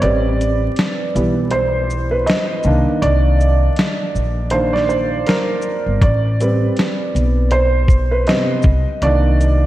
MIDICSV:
0, 0, Header, 1, 4, 480
1, 0, Start_track
1, 0, Tempo, 750000
1, 12, Time_signature, 4, 2, 24, 8
1, 6185, End_track
2, 0, Start_track
2, 0, Title_t, "Felt piano"
2, 0, Program_c, 0, 0
2, 0, Control_c, 0, 64, 127
2, 10, Note_on_c, 0, 74, 93
2, 12, Note_on_c, 0, 60, 56
2, 18, Note_on_c, 0, 55, 51
2, 19, Note_on_c, 0, 71, 60
2, 21, Control_c, 0, 64, 0
2, 143, Control_c, 0, 64, 127
2, 732, Note_off_c, 0, 55, 0
2, 739, Note_on_c, 0, 52, 48
2, 742, Note_on_c, 0, 55, 47
2, 743, Note_on_c, 0, 59, 52
2, 952, Note_off_c, 0, 52, 0
2, 953, Note_off_c, 0, 55, 0
2, 954, Note_off_c, 0, 59, 0
2, 968, Note_on_c, 0, 72, 93
2, 1000, Note_off_c, 0, 74, 0
2, 1326, Note_off_c, 0, 72, 0
2, 1341, Note_off_c, 0, 71, 0
2, 1350, Note_on_c, 0, 71, 79
2, 1448, Note_on_c, 0, 75, 94
2, 1453, Note_off_c, 0, 71, 0
2, 1666, Note_off_c, 0, 60, 0
2, 1700, Note_on_c, 0, 51, 56
2, 1701, Control_c, 0, 64, 0
2, 1705, Note_on_c, 0, 58, 57
2, 1707, Note_on_c, 0, 62, 62
2, 1805, Control_c, 0, 64, 127
2, 1806, Note_off_c, 0, 75, 0
2, 1932, Note_on_c, 0, 74, 95
2, 2032, Note_off_c, 0, 51, 0
2, 2034, Note_off_c, 0, 58, 0
2, 2036, Note_off_c, 0, 62, 0
2, 2887, Note_on_c, 0, 72, 94
2, 2894, Note_on_c, 0, 51, 45
2, 2895, Note_on_c, 0, 58, 44
2, 2900, Note_on_c, 0, 62, 53
2, 2921, Note_off_c, 0, 74, 0
2, 3028, Note_on_c, 0, 74, 91
2, 3035, Note_off_c, 0, 72, 0
2, 3109, Note_off_c, 0, 51, 0
2, 3110, Note_off_c, 0, 58, 0
2, 3112, Note_off_c, 0, 62, 0
2, 3129, Note_on_c, 0, 72, 78
2, 3132, Note_off_c, 0, 74, 0
2, 3371, Note_on_c, 0, 70, 80
2, 3378, Note_off_c, 0, 72, 0
2, 3728, Note_off_c, 0, 70, 0
2, 3852, Note_on_c, 0, 74, 91
2, 3861, Control_c, 0, 64, 0
2, 3972, Control_c, 0, 64, 127
2, 4099, Note_on_c, 0, 60, 52
2, 4102, Note_on_c, 0, 55, 51
2, 4107, Note_on_c, 0, 71, 62
2, 4810, Note_on_c, 0, 72, 96
2, 4841, Note_off_c, 0, 74, 0
2, 5183, Note_off_c, 0, 71, 0
2, 5193, Note_on_c, 0, 71, 79
2, 5204, Note_off_c, 0, 72, 0
2, 5292, Note_off_c, 0, 55, 0
2, 5295, Note_off_c, 0, 71, 0
2, 5296, Note_on_c, 0, 75, 99
2, 5297, Note_on_c, 0, 48, 49
2, 5302, Note_on_c, 0, 55, 42
2, 5302, Note_on_c, 0, 59, 53
2, 5510, Note_off_c, 0, 60, 0
2, 5511, Note_off_c, 0, 48, 0
2, 5513, Note_off_c, 0, 55, 0
2, 5513, Note_off_c, 0, 59, 0
2, 5539, Control_c, 0, 64, 0
2, 5650, Note_off_c, 0, 75, 0
2, 5650, Control_c, 0, 64, 127
2, 5775, Note_on_c, 0, 74, 98
2, 5776, Note_on_c, 0, 51, 56
2, 5781, Note_on_c, 0, 58, 48
2, 5785, Note_on_c, 0, 62, 60
2, 6185, Note_off_c, 0, 51, 0
2, 6185, Note_off_c, 0, 58, 0
2, 6185, Note_off_c, 0, 62, 0
2, 6185, Note_off_c, 0, 74, 0
2, 6185, End_track
3, 0, Start_track
3, 0, Title_t, "Upright bass"
3, 0, Program_c, 1, 32
3, 18, Note_on_c, 1, 33, 99
3, 429, Note_off_c, 1, 33, 0
3, 738, Note_on_c, 1, 35, 82
3, 1429, Note_off_c, 1, 35, 0
3, 1694, Note_on_c, 1, 36, 102
3, 1815, Note_off_c, 1, 36, 0
3, 1933, Note_on_c, 1, 36, 106
3, 2346, Note_off_c, 1, 36, 0
3, 2655, Note_on_c, 1, 34, 83
3, 3348, Note_off_c, 1, 34, 0
3, 3753, Note_on_c, 1, 31, 79
3, 3838, Note_off_c, 1, 31, 0
3, 3853, Note_on_c, 1, 33, 100
3, 4266, Note_off_c, 1, 33, 0
3, 4575, Note_on_c, 1, 35, 94
3, 5268, Note_off_c, 1, 35, 0
3, 5531, Note_on_c, 1, 36, 96
3, 5653, Note_off_c, 1, 36, 0
3, 5771, Note_on_c, 1, 36, 104
3, 6184, Note_off_c, 1, 36, 0
3, 6185, End_track
4, 0, Start_track
4, 0, Title_t, "Drums"
4, 12, Note_on_c, 9, 42, 80
4, 76, Note_off_c, 9, 42, 0
4, 262, Note_on_c, 9, 42, 50
4, 262, Note_on_c, 9, 82, 50
4, 326, Note_off_c, 9, 42, 0
4, 326, Note_off_c, 9, 82, 0
4, 489, Note_on_c, 9, 42, 62
4, 505, Note_on_c, 9, 38, 98
4, 553, Note_off_c, 9, 42, 0
4, 569, Note_off_c, 9, 38, 0
4, 741, Note_on_c, 9, 42, 49
4, 741, Note_on_c, 9, 82, 48
4, 805, Note_off_c, 9, 42, 0
4, 805, Note_off_c, 9, 82, 0
4, 964, Note_on_c, 9, 42, 81
4, 1028, Note_off_c, 9, 42, 0
4, 1216, Note_on_c, 9, 82, 51
4, 1280, Note_off_c, 9, 82, 0
4, 1454, Note_on_c, 9, 42, 56
4, 1469, Note_on_c, 9, 38, 109
4, 1518, Note_off_c, 9, 42, 0
4, 1533, Note_off_c, 9, 38, 0
4, 1684, Note_on_c, 9, 82, 46
4, 1748, Note_off_c, 9, 82, 0
4, 1935, Note_on_c, 9, 42, 84
4, 1999, Note_off_c, 9, 42, 0
4, 2179, Note_on_c, 9, 82, 47
4, 2243, Note_off_c, 9, 82, 0
4, 2409, Note_on_c, 9, 42, 59
4, 2425, Note_on_c, 9, 38, 102
4, 2473, Note_off_c, 9, 42, 0
4, 2489, Note_off_c, 9, 38, 0
4, 2659, Note_on_c, 9, 82, 48
4, 2723, Note_off_c, 9, 82, 0
4, 2882, Note_on_c, 9, 42, 82
4, 2946, Note_off_c, 9, 42, 0
4, 3045, Note_on_c, 9, 38, 34
4, 3109, Note_off_c, 9, 38, 0
4, 3134, Note_on_c, 9, 82, 52
4, 3198, Note_off_c, 9, 82, 0
4, 3370, Note_on_c, 9, 42, 59
4, 3385, Note_on_c, 9, 38, 113
4, 3434, Note_off_c, 9, 42, 0
4, 3449, Note_off_c, 9, 38, 0
4, 3595, Note_on_c, 9, 82, 47
4, 3659, Note_off_c, 9, 82, 0
4, 3850, Note_on_c, 9, 36, 106
4, 3851, Note_on_c, 9, 42, 78
4, 3914, Note_off_c, 9, 36, 0
4, 3915, Note_off_c, 9, 42, 0
4, 4099, Note_on_c, 9, 42, 48
4, 4099, Note_on_c, 9, 82, 50
4, 4163, Note_off_c, 9, 42, 0
4, 4163, Note_off_c, 9, 82, 0
4, 4330, Note_on_c, 9, 42, 61
4, 4347, Note_on_c, 9, 38, 95
4, 4394, Note_off_c, 9, 42, 0
4, 4411, Note_off_c, 9, 38, 0
4, 4582, Note_on_c, 9, 42, 49
4, 4582, Note_on_c, 9, 82, 51
4, 4646, Note_off_c, 9, 42, 0
4, 4646, Note_off_c, 9, 82, 0
4, 4804, Note_on_c, 9, 42, 75
4, 4868, Note_off_c, 9, 42, 0
4, 5045, Note_on_c, 9, 36, 84
4, 5053, Note_on_c, 9, 82, 50
4, 5109, Note_off_c, 9, 36, 0
4, 5117, Note_off_c, 9, 82, 0
4, 5291, Note_on_c, 9, 42, 57
4, 5306, Note_on_c, 9, 38, 110
4, 5355, Note_off_c, 9, 42, 0
4, 5370, Note_off_c, 9, 38, 0
4, 5519, Note_on_c, 9, 82, 45
4, 5530, Note_on_c, 9, 36, 95
4, 5583, Note_off_c, 9, 82, 0
4, 5594, Note_off_c, 9, 36, 0
4, 5772, Note_on_c, 9, 42, 82
4, 5836, Note_off_c, 9, 42, 0
4, 6020, Note_on_c, 9, 42, 50
4, 6020, Note_on_c, 9, 82, 48
4, 6084, Note_off_c, 9, 42, 0
4, 6084, Note_off_c, 9, 82, 0
4, 6185, End_track
0, 0, End_of_file